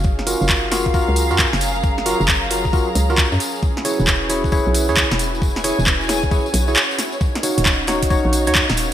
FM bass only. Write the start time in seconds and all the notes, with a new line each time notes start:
Already playing: F#1
0.41 F#1
1.08 C#2
1.31 F#2
1.53 F#1
2.20 F#1
2.95 C#2
3.32 F#2
3.99 E1
4.67 B1
4.89 E2
5.11 E1
5.79 E1
6.54 B1
7.58 D#1
8.25 A#1
8.47 D#2
8.70 D#1